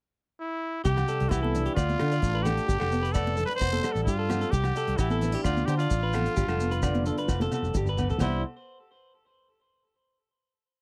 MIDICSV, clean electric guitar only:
0, 0, Header, 1, 2, 480
1, 0, Start_track
1, 0, Key_signature, 0, "major"
1, 0, Tempo, 459770
1, 888, Time_signature, 4, 2, 24, 8
1, 11292, End_track
2, 0, Start_track
2, 0, Title_t, "Clean electric guitar"
2, 0, Program_c, 0, 27
2, 888, Note_on_c, 0, 67, 83
2, 1116, Note_off_c, 0, 67, 0
2, 1133, Note_on_c, 0, 69, 68
2, 1358, Note_off_c, 0, 69, 0
2, 1381, Note_on_c, 0, 67, 74
2, 1486, Note_off_c, 0, 67, 0
2, 1490, Note_on_c, 0, 69, 65
2, 1717, Note_off_c, 0, 69, 0
2, 1733, Note_on_c, 0, 67, 65
2, 1843, Note_off_c, 0, 67, 0
2, 1847, Note_on_c, 0, 74, 75
2, 2076, Note_off_c, 0, 74, 0
2, 2085, Note_on_c, 0, 69, 69
2, 2200, Note_off_c, 0, 69, 0
2, 2220, Note_on_c, 0, 74, 65
2, 2443, Note_off_c, 0, 74, 0
2, 2452, Note_on_c, 0, 71, 68
2, 2563, Note_on_c, 0, 69, 73
2, 2564, Note_off_c, 0, 71, 0
2, 2794, Note_off_c, 0, 69, 0
2, 2801, Note_on_c, 0, 67, 78
2, 2916, Note_off_c, 0, 67, 0
2, 2920, Note_on_c, 0, 69, 68
2, 3152, Note_off_c, 0, 69, 0
2, 3159, Note_on_c, 0, 71, 67
2, 3278, Note_off_c, 0, 71, 0
2, 3282, Note_on_c, 0, 74, 75
2, 3514, Note_off_c, 0, 74, 0
2, 3523, Note_on_c, 0, 69, 69
2, 3640, Note_off_c, 0, 69, 0
2, 3647, Note_on_c, 0, 71, 71
2, 3876, Note_off_c, 0, 71, 0
2, 3891, Note_on_c, 0, 69, 67
2, 3998, Note_off_c, 0, 69, 0
2, 4011, Note_on_c, 0, 69, 68
2, 4239, Note_off_c, 0, 69, 0
2, 4262, Note_on_c, 0, 67, 69
2, 4367, Note_off_c, 0, 67, 0
2, 4372, Note_on_c, 0, 69, 65
2, 4595, Note_off_c, 0, 69, 0
2, 4607, Note_on_c, 0, 69, 59
2, 4723, Note_off_c, 0, 69, 0
2, 4737, Note_on_c, 0, 67, 83
2, 4962, Note_off_c, 0, 67, 0
2, 4982, Note_on_c, 0, 69, 73
2, 5205, Note_off_c, 0, 69, 0
2, 5221, Note_on_c, 0, 67, 75
2, 5331, Note_off_c, 0, 67, 0
2, 5338, Note_on_c, 0, 69, 71
2, 5563, Note_off_c, 0, 69, 0
2, 5583, Note_on_c, 0, 67, 64
2, 5692, Note_off_c, 0, 67, 0
2, 5697, Note_on_c, 0, 74, 78
2, 5923, Note_off_c, 0, 74, 0
2, 5943, Note_on_c, 0, 72, 65
2, 6052, Note_off_c, 0, 72, 0
2, 6056, Note_on_c, 0, 74, 62
2, 6283, Note_off_c, 0, 74, 0
2, 6296, Note_on_c, 0, 71, 65
2, 6409, Note_off_c, 0, 71, 0
2, 6411, Note_on_c, 0, 69, 68
2, 6641, Note_off_c, 0, 69, 0
2, 6646, Note_on_c, 0, 67, 77
2, 6764, Note_off_c, 0, 67, 0
2, 6769, Note_on_c, 0, 69, 65
2, 7000, Note_off_c, 0, 69, 0
2, 7009, Note_on_c, 0, 71, 68
2, 7126, Note_off_c, 0, 71, 0
2, 7135, Note_on_c, 0, 74, 71
2, 7363, Note_off_c, 0, 74, 0
2, 7377, Note_on_c, 0, 69, 69
2, 7490, Note_off_c, 0, 69, 0
2, 7501, Note_on_c, 0, 71, 68
2, 7726, Note_off_c, 0, 71, 0
2, 7746, Note_on_c, 0, 69, 69
2, 7855, Note_off_c, 0, 69, 0
2, 7872, Note_on_c, 0, 69, 67
2, 8092, Note_off_c, 0, 69, 0
2, 8111, Note_on_c, 0, 67, 69
2, 8218, Note_off_c, 0, 67, 0
2, 8238, Note_on_c, 0, 71, 69
2, 8455, Note_off_c, 0, 71, 0
2, 8461, Note_on_c, 0, 69, 59
2, 8572, Note_off_c, 0, 69, 0
2, 8579, Note_on_c, 0, 72, 73
2, 8800, Note_off_c, 0, 72, 0
2, 11292, End_track
0, 0, End_of_file